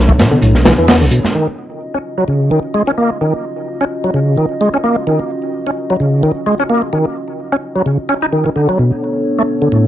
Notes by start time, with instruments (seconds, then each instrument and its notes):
Already playing: detuned saw bass B1, analog synth pad B3 D4 A4 C#5
0.08 tonewheel organ A3, kick
0.19 detuned saw bass B2, snare, closed hi-hat, low conga
0.31 detuned saw bass B2, tonewheel organ D3
0.42 detuned saw bass B1, tonewheel organ A2, closed hi-hat
0.55 snare, high conga
0.65 tonewheel organ E3, snare, closed hi-hat, low conga
0.78 detuned saw bass E2, tonewheel organ E3
0.88 tonewheel organ B3, snare, open hi-hat
1.01 detuned saw bass B1, tonewheel organ D3
1.11 tonewheel organ B2, closed hi-hat
1.25 snare, high conga
1.35 tonewheel organ D#3, analog synth pad C#4 F4 F#4 D#5
1.94 tonewheel organ C#4
2.18 tonewheel organ F#3
2.28 tonewheel organ C#3
2.51 tonewheel organ D#3
2.74 tonewheel organ G#3
2.87 tonewheel organ C#4
2.98 tonewheel organ A#3
3.21 tonewheel organ D#3
3.81 tonewheel organ C#4
4.04 tonewheel organ F#3
4.14 tonewheel organ C#3
4.38 tonewheel organ D#3
4.61 tonewheel organ G#3
4.74 tonewheel organ C#4
4.84 tonewheel organ A#3
5.07 tonewheel organ D#3
5.67 tonewheel organ C#4
5.90 tonewheel organ F#3
6.00 tonewheel organ C#3
6.23 tonewheel organ D#3
6.46 tonewheel organ G#3
6.60 tonewheel organ C#4
6.70 tonewheel organ A#3
6.93 tonewheel organ D#3
7.52 tonewheel organ C#4
7.76 tonewheel organ F#3
7.86 tonewheel organ C#3
8.09 tonewheel organ C#4
8.22 tonewheel organ D#4
8.33 tonewheel organ D#3
8.46 tonewheel organ D#3
8.56 tonewheel organ D3, analog synth pad B3 D4 A4 C#5
8.69 tonewheel organ F#3
8.79 tonewheel organ B2
9.39 tonewheel organ A3
9.62 tonewheel organ D3
9.72 tonewheel organ A2